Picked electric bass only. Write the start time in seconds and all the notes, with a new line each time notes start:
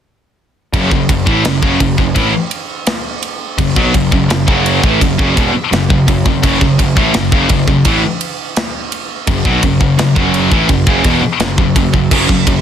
0.73 F#1
0.92 F#1
1.09 F#1
1.27 A1
1.44 F#1
1.63 F#1
1.81 F#1
1.98 F#1
2.16 A1
3.58 F#1
3.77 B1
3.95 F#1
4.12 F#1
4.30 F#1
4.48 F#1
4.83 A1
5.01 F#1
5.19 F#1
5.37 E1
5.54 muted picked electric bass stroke
5.72 F#1
5.90 F#1
6.08 F#1
6.26 F#1
6.44 F#1
6.61 F#1
6.79 F#1
6.97 A1
7.14 F#1
7.32 F#1
7.50 F#1
7.68 F#1
7.85 A1
9.28 F#1
9.45 B1
9.63 F#1
9.81 F#1
9.99 F#1
10.16 F#1
10.52 A1
10.69 F#1
10.87 F#1
11.05 E1
11.24 muted picked electric bass stroke
11.40 F#1
11.58 F#1
11.76 F#1
11.93 F#1
12.11 F#1
12.29 F#1
12.47 F#1